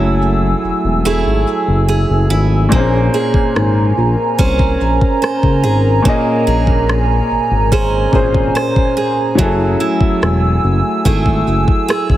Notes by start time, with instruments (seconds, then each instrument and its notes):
Already playing: analog synth bass F#1, grand piano F#3 C#4 E4 G#4 A4, steel-string acoustic guitar F#3 A3 E4 G#4, analog synth pad A3 G#5 E6
0.64 analog synth bass E1
0.84 analog synth bass E1
1.05 analog synth bass E1, steel-string acoustic guitar A3 E4 G#4
1.26 analog synth bass G#1
1.68 analog synth bass F#1
1.89 steel-string acoustic guitar G#4
2.09 analog synth bass F#1
2.30 analog synth bass G#1, steel-string acoustic guitar E4
2.69 analog synth bass A#1, grand piano A#2 A#3 C4, steel-string acoustic guitar A#3, analog synth pad A#4 A#5, kick
2.74 grand piano G#4 C5
2.79 grand piano C#4
3.14 steel-string acoustic guitar G#4
3.34 kick
3.56 analog synth bass G#1, cross-stick
3.98 analog synth bass A#1
4.39 analog synth bass C2, steel-string acoustic guitar C#4 G#4 C5, kick
4.59 kick
4.81 analog synth bass A#1
5.01 kick
5.22 steel-string acoustic guitar C5, cross-stick
5.43 analog synth bass C#2, kick
5.64 analog synth bass G#1, steel-string acoustic guitar G#4
6.02 grand piano A#2 A#3 C#4, steel-string acoustic guitar A#3, kick
6.08 grand piano G#4 D#5
6.47 analog synth bass A#1, steel-string acoustic guitar G#4
6.67 kick
6.89 cross-stick
7.30 analog synth bass G#1
7.51 analog synth bass G#1
7.72 steel-string acoustic guitar C#4 G#4 C5, kick
8.12 analog synth bass G#1, grand piano A#2 A#3 C#4 G#4 C5, kick
8.34 kick
8.55 steel-string acoustic guitar C5, cross-stick
8.76 kick
8.97 steel-string acoustic guitar G#4
9.35 analog synth bass F#1, grand piano F#3 C#4 E4, steel-string acoustic guitar F#3, analog synth pad A3, kick
9.39 grand piano G#4 A4, analog synth pad E6
9.80 steel-string acoustic guitar E4
10.01 kick
10.22 analog synth bass E1, cross-stick
10.64 analog synth bass F#1
11.05 analog synth bass G#1, steel-string acoustic guitar A3 E4 G#4, kick
11.26 kick
11.47 analog synth bass F#1
11.68 kick
11.88 steel-string acoustic guitar G#4, cross-stick
12.10 analog synth bass A1, kick